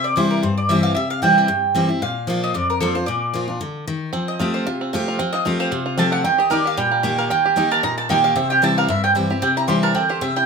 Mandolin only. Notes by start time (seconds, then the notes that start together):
0.04 D5
0.17 C5
0.31 A#4
0.43 C5
0.57 D5
0.69 E5
0.83 F5
0.95 E5
1.10 F5
1.23 G5
1.38 G5
2.02 F5
2.44 D#5
2.54 D5
2.70 A#4
2.80 A4
2.95 C5
3.06 D5
4.28 D#5
4.54 C5
5.33 D#5
5.60 C5
5.99 A5
6.12 F#5
6.25 G5
6.40 D#5
6.52 D5
6.67 F5
6.78 G5
7.18 F5
7.30 G5
7.71 A5
7.84 A#5
7.98 A5
8.10 G5
8.24 F5
8.36 E5
8.50 G5
8.64 A5
8.78 F5
8.90 E5
9.04 G5
9.42 G5
9.57 A#5
9.68 C6
9.83 A5
9.95 G5
10.09 C5
10.22 E5
10.36 G5